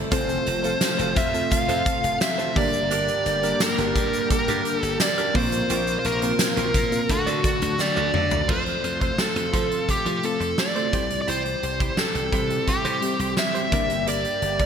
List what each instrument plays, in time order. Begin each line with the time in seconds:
Already playing: analog synth pad C3 A3, fm electric piano A3 C4 E4 G4
0.12 slap bass F1, analog synth pad F3 F4, fm electric piano A3 C4 F4 A4, analog polysynth C4 F4 A4, clean electric guitar F4 A4 C5, lead electric guitar C5, kick, closed hi-hat, shaker
0.29 closed hi-hat, shaker
0.46 slap bass F1, muted clean electric guitar stroke, closed hi-hat, shaker
0.64 fm electric piano A3 C4 F4 A4, clean electric guitar F4 A4 C5, closed hi-hat, shaker
0.81 muted clean electric guitar stroke, snare, closed hi-hat, tambourine, shaker
0.99 slap bass F1, clean electric guitar F4 A4 C5, closed hi-hat, shaker
1.16 slap bass F2, lead electric guitar E5, muted clean electric guitar stroke, kick, closed hi-hat, shaker
1.33 fm electric piano A3 C4 F4 A4, muted clean electric guitar stroke, closed hi-hat, shaker
1.51 lead electric guitar F5, muted clean electric guitar stroke, muted slap bass stroke, kick, closed hi-hat, shaker
1.69 slap bass F2, clean electric guitar F4 A4 C5, closed hi-hat, shaker
1.86 clean electric guitar F4 A4 C5, kick, closed hi-hat, shaker
2.03 slap bass F1, muted clean electric guitar stroke, closed hi-hat, shaker
2.21 lead electric guitar E5, muted clean electric guitar stroke, snare, closed hi-hat, tambourine, shaker
2.38 clean electric guitar F4 A4 C5, closed hi-hat, shaker
2.55 slap bass G1, fm electric piano G2 A#3 D4 G4 A#4, analog synth pad D3 G3 A#3 G4, analog polysynth D4 G4 A#4, clean electric guitar D4 G4 A#4, lead electric guitar D5, kick, open hi-hat
2.73 muted clean electric guitar stroke, closed hi-hat, shaker
2.91 clean electric guitar D4 G4 A#4, closed hi-hat, shaker
3.08 closed hi-hat, shaker
3.26 slap bass G1, muted clean electric guitar stroke, closed hi-hat, shaker
3.43 fm electric piano A#3 D4 G4 A#4, clean electric guitar D4 G4 A#4, closed hi-hat, shaker
3.60 lead electric guitar A#4, snare, closed hi-hat, tambourine, shaker
3.77 slap bass G1, fm electric piano A#3 D4 G4 A#4, clean electric guitar D4 G4 A#4, closed hi-hat, shaker
3.96 slap bass G2, muted clean electric guitar stroke, kick, closed hi-hat, shaker
4.13 muted clean electric guitar stroke, closed hi-hat, shaker
4.30 lead electric guitar A#4, muted slap bass stroke, muted clean electric guitar stroke, kick, closed hi-hat, shaker
4.48 slap bass G2, clean electric guitar D4 G4 A#4, closed hi-hat, shaker
4.65 clean electric guitar D4 G4 A#4, closed hi-hat, shaker
4.78 lead electric guitar A4
4.83 slap bass G1, muted clean electric guitar stroke, closed hi-hat, shaker
5.00 lead electric guitar D5, muted clean electric guitar stroke, snare, closed hi-hat, tambourine, shaker
5.18 clean electric guitar D4 G4 A#4, closed hi-hat, shaker
5.34 slap bass A#1, fm electric piano A#2 A#3 C4 F4 A#4, analog synth pad C3 F3 F4, clean electric guitar C4 F4 A#4, analog polysynth F4 C5, lead electric guitar C5, kick, open hi-hat
5.52 muted clean electric guitar stroke, closed hi-hat, shaker
5.70 slap bass A#1, clean electric guitar C4 F4 A#4, closed hi-hat, shaker
5.87 closed hi-hat, shaker
5.99 lead electric guitar C5
6.04 slap bass A#1, lead electric guitar A#4, muted clean electric guitar stroke, closed hi-hat, shaker
6.22 fm electric piano A#3 C4 F4 A#4, clean electric guitar C4 F4 A#4, closed hi-hat, shaker
6.39 muted clean electric guitar stroke, snare, closed hi-hat, tambourine, shaker
6.57 slap bass A#1, clean electric guitar C4 F4 A#4, closed hi-hat, shaker
6.74 slap bass A#2, muted clean electric guitar stroke, kick, closed hi-hat, shaker
6.91 fm electric piano A#3 C4 F4 A#4, muted clean electric guitar stroke, closed hi-hat, shaker
7.09 slap bass D2, fm electric piano D3 A3 D4 F#4 A4, analog synth pad D3 F#3 A3 F#4, analog polysynth D4 F#4 A4, lead electric guitar F#4, muted clean electric guitar stroke, kick, closed hi-hat, shaker
7.26 slap bass D3, clean electric guitar F#4 A4 D5, closed hi-hat, shaker
7.44 clean electric guitar F#4 A4 D5, kick, closed hi-hat, shaker
7.62 slap bass D2, muted clean electric guitar stroke, closed hi-hat, shaker
7.79 lead electric guitar D5, muted clean electric guitar stroke, muted slap bass stroke, snare, shaker
7.96 slap bass D2, clean electric guitar F#4 A4 D5, shaker
8.14 slap bass D3, clean electric guitar F#4 A4 D5, mid tom
8.31 muted clean electric guitar stroke, floor tom, shaker
8.48 slap bass F2, analog synth pad C3 F3 A3 F4, fm electric piano A3 C4 F4 A4, clean electric guitar F4 A4 C5, lead electric guitar C5, kick, crash
8.66 muted clean electric guitar stroke, closed hi-hat
8.83 slap bass F2, muted clean electric guitar stroke, closed hi-hat
9.01 clean electric guitar F4 A4 C5, kick, closed hi-hat
9.18 lead electric guitar A4, muted clean electric guitar stroke, snare
9.36 slap bass F2, muted clean electric guitar stroke, closed hi-hat
9.53 slap bass F3, fm electric piano A3 C4 F4 A4, clean electric guitar F4 A4 C5, kick, closed hi-hat
9.71 muted clean electric guitar stroke, closed hi-hat
9.88 lead electric guitar G4, muted clean electric guitar stroke, muted slap bass stroke, kick, closed hi-hat
10.06 slap bass F3, muted clean electric guitar stroke, closed hi-hat
10.23 fm electric piano A3 C4 F4 A4, lead electric guitar A4, closed hi-hat
10.40 slap bass F2, muted clean electric guitar stroke, closed hi-hat
10.58 lead electric guitar D5, muted clean electric guitar stroke, snare
10.75 fm electric piano A3 C4 F4 A4, clean electric guitar F4 A4 C5, closed hi-hat
10.93 slap bass C2, fm electric piano C3 G3 C4 E4 G4, analog synth pad E3 G3 C4 G4, clean electric guitar E4 G4 C5, kick, closed hi-hat
11.10 muted clean electric guitar stroke, closed hi-hat
11.22 lead electric guitar D5
11.28 slap bass C2, clean electric guitar E4 G4 C5, lead electric guitar C5, closed hi-hat
11.45 muted clean electric guitar stroke, closed hi-hat
11.63 slap bass C2, muted clean electric guitar stroke, closed hi-hat
11.80 clean electric guitar E4 G4 C5, kick, closed hi-hat
11.97 lead electric guitar A4, muted clean electric guitar stroke, snare
12.15 slap bass C2, muted clean electric guitar stroke, closed hi-hat
12.32 slap bass C3, fm electric piano G3 C4 E4 G4, clean electric guitar E4 G4 C5, kick, closed hi-hat
12.50 muted clean electric guitar stroke, closed hi-hat
12.67 lead electric guitar G4, muted slap bass stroke, muted clean electric guitar stroke, kick, closed hi-hat
12.85 slap bass C3, clean electric guitar E4 G4 C5, closed hi-hat
13.01 fm electric piano G3 C4 E4 G4, clean electric guitar E4 G4 C5, closed hi-hat
13.19 slap bass C2, muted clean electric guitar stroke, closed hi-hat
13.37 lead electric guitar E5, muted clean electric guitar stroke, snare
13.53 fm electric piano G3 C4 E4 G4, clean electric guitar E4 G4 C5, closed hi-hat
13.71 slap bass G1, fm electric piano G2 A#3 D4 G4 A#4, analog synth pad D3 A#3, clean electric guitar G4 A#4 D5, kick, closed hi-hat
13.90 muted clean electric guitar stroke, closed hi-hat
14.07 clean electric guitar G4 A#4 D5, lead electric guitar D5, closed hi-hat
14.25 muted clean electric guitar stroke, closed hi-hat
14.42 slap bass G1, muted clean electric guitar stroke, closed hi-hat
14.59 clean electric guitar G4 A#4 D5, kick, closed hi-hat